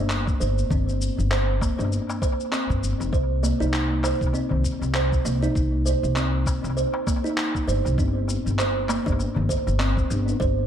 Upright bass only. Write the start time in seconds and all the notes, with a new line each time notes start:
Already playing: G1
0.41 G1
0.71 G1
1.18 G1
1.79 G1
2.70 G2
2.83 G1
3.00 F1
3.13 C2
3.61 C2
4.21 C2
4.51 C2
4.81 C2
5.25 C2
5.55 C2
6.03 C2
6.64 C2
7.68 G1
7.85 C2
7.98 G1
8.46 G1
9.06 G1
9.37 G1
9.67 G1
10.10 G1
10.40 G1